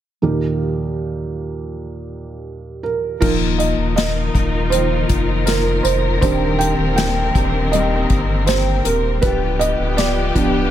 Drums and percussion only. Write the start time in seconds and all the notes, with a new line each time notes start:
3.22 kick, crash
3.60 closed hi-hat
3.97 snare, closed hi-hat
4.35 kick, closed hi-hat
4.72 closed hi-hat
5.09 kick, closed hi-hat
5.47 snare, closed hi-hat
5.85 closed hi-hat
6.22 kick, closed hi-hat
6.61 closed hi-hat
6.98 snare, closed hi-hat
7.35 kick, closed hi-hat
7.73 closed hi-hat
8.10 kick, closed hi-hat
8.47 snare, closed hi-hat
8.85 closed hi-hat
9.22 kick, closed hi-hat
9.61 closed hi-hat
9.98 snare, closed hi-hat
10.36 kick, closed hi-hat